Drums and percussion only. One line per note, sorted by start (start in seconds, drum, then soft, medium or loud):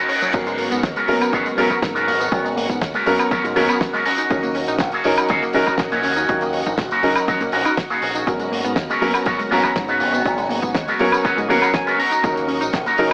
0.09 open hi-hat loud
0.22 closed hi-hat medium
0.22 tambourine medium
0.34 kick loud
0.34 closed hi-hat medium
0.34 crash medium
0.34 tambourine medium
0.47 closed hi-hat medium
0.47 tambourine soft
0.58 open hi-hat loud
0.72 closed hi-hat medium
0.72 tambourine medium
0.83 kick loud
0.83 snare loud
0.83 closed hi-hat medium
0.83 tambourine medium
0.96 closed hi-hat medium
0.96 tambourine soft
1.08 open hi-hat loud
1.22 closed hi-hat medium
1.22 tambourine medium
1.22 high woodblock medium
1.33 kick loud
1.33 closed hi-hat medium
1.33 tambourine medium
1.46 closed hi-hat medium
1.46 tambourine soft
1.58 open hi-hat loud
1.70 kick medium
1.70 closed hi-hat medium
1.70 tambourine medium
1.70 high woodblock medium
1.82 kick loud
1.82 snare loud
1.82 closed hi-hat medium
1.82 tambourine medium
1.96 closed hi-hat medium
1.96 tambourine soft
2.08 open hi-hat loud
2.21 closed hi-hat medium
2.21 tambourine medium
2.32 kick loud
2.32 closed hi-hat medium
2.32 tambourine medium
2.46 closed hi-hat medium
2.46 tambourine soft
2.57 open hi-hat loud
2.70 kick medium
2.70 closed hi-hat medium
2.70 tambourine medium
2.81 kick loud
2.81 snare loud
2.81 closed hi-hat medium
2.81 tambourine medium
2.94 closed hi-hat medium
2.94 tambourine soft
3.06 open hi-hat loud
3.19 closed hi-hat medium
3.19 tambourine medium
3.19 high woodblock medium
3.31 kick loud
3.31 closed hi-hat medium
3.31 tambourine medium
3.45 closed hi-hat medium
3.45 tambourine soft
3.56 open hi-hat loud
3.69 closed hi-hat soft
3.69 tambourine medium
3.69 high woodblock medium
3.81 kick loud
3.81 snare loud
3.81 closed hi-hat medium
3.81 tambourine medium
3.94 closed hi-hat medium
3.94 tambourine soft
4.05 open hi-hat loud
4.18 closed hi-hat medium
4.18 tambourine medium
4.30 kick loud
4.30 closed hi-hat medium
4.30 tambourine soft
4.43 closed hi-hat medium
4.43 tambourine soft
4.55 open hi-hat loud
4.67 closed hi-hat medium
4.67 tambourine medium
4.79 kick loud
4.79 snare loud
4.79 closed hi-hat medium
4.79 tambourine medium
4.92 closed hi-hat medium
4.92 tambourine soft
5.04 open hi-hat loud
5.17 closed hi-hat medium
5.17 tambourine medium
5.17 high woodblock medium
5.29 kick loud
5.29 closed hi-hat medium
5.29 tambourine medium
5.42 closed hi-hat soft
5.42 tambourine soft
5.53 open hi-hat loud
5.67 kick medium
5.67 tambourine medium
5.67 high woodblock medium
5.78 kick loud
5.78 snare loud
5.78 closed hi-hat medium
5.78 tambourine medium
5.92 closed hi-hat medium
5.92 tambourine soft
6.03 open hi-hat loud
6.16 closed hi-hat medium
6.16 tambourine medium
6.29 kick loud
6.29 closed hi-hat medium
6.29 tambourine soft
6.41 closed hi-hat medium
6.41 tambourine soft
6.53 open hi-hat loud
6.66 kick medium
6.66 closed hi-hat medium
6.66 tambourine medium
6.78 kick loud
6.78 snare loud
6.78 closed hi-hat medium
6.78 tambourine medium
6.91 closed hi-hat medium
6.91 tambourine soft
7.03 open hi-hat loud
7.16 closed hi-hat medium
7.16 tambourine medium
7.16 high woodblock medium
7.28 kick loud
7.28 closed hi-hat medium
7.28 tambourine medium
7.40 closed hi-hat medium
7.40 tambourine soft
7.52 open hi-hat loud
7.65 closed hi-hat medium
7.65 tambourine medium
7.65 high woodblock medium
7.77 kick loud
7.77 snare loud
7.77 closed hi-hat medium
7.77 tambourine soft
7.90 closed hi-hat soft
7.90 tambourine soft
8.02 open hi-hat loud
8.15 closed hi-hat soft
8.15 tambourine medium
8.27 kick loud
8.27 closed hi-hat medium
8.27 tambourine medium
8.40 closed hi-hat medium
8.40 tambourine soft
8.53 open hi-hat loud
8.64 closed hi-hat medium
8.64 tambourine medium
8.76 kick loud
8.76 snare loud
8.76 closed hi-hat medium
8.76 tambourine medium
8.90 closed hi-hat medium
8.90 tambourine soft
9.02 open hi-hat loud
9.14 closed hi-hat medium
9.14 tambourine medium
9.14 high woodblock medium
9.26 kick loud
9.26 closed hi-hat medium
9.26 tambourine medium
9.39 closed hi-hat medium
9.39 tambourine soft
9.52 open hi-hat loud
9.64 kick medium
9.64 tambourine medium
9.64 high woodblock medium
9.76 kick loud
9.76 snare loud
9.76 closed hi-hat medium
9.76 tambourine medium
9.88 closed hi-hat soft
9.88 tambourine soft
10.00 open hi-hat loud
10.14 closed hi-hat medium
10.14 tambourine medium
10.26 kick loud
10.26 closed hi-hat medium
10.26 tambourine medium
10.38 closed hi-hat medium
10.38 tambourine soft
10.50 open hi-hat loud
10.63 kick medium
10.63 closed hi-hat medium
10.63 tambourine medium
10.75 kick loud
10.75 snare loud
10.75 closed hi-hat medium
10.75 tambourine medium
10.88 closed hi-hat medium
10.88 tambourine soft
10.99 open hi-hat loud
11.12 closed hi-hat medium
11.12 tambourine medium
11.12 high woodblock medium
11.25 kick loud
11.25 closed hi-hat medium
11.25 tambourine medium
11.38 closed hi-hat soft
11.38 tambourine soft
11.50 open hi-hat loud
11.62 closed hi-hat medium
11.62 tambourine medium
11.62 high woodblock medium
11.74 kick loud
11.74 snare loud
11.74 closed hi-hat medium
11.74 tambourine medium
11.87 closed hi-hat medium
11.87 tambourine soft
12.00 open hi-hat loud
12.12 closed hi-hat medium
12.12 tambourine medium
12.24 kick loud
12.24 closed hi-hat medium
12.24 tambourine medium
12.37 closed hi-hat medium
12.37 tambourine soft
12.48 open hi-hat loud
12.61 closed hi-hat medium
12.61 tambourine medium
12.73 kick loud
12.73 snare loud
12.73 closed hi-hat medium
12.73 tambourine medium
12.86 closed hi-hat medium
12.86 tambourine soft
12.98 open hi-hat loud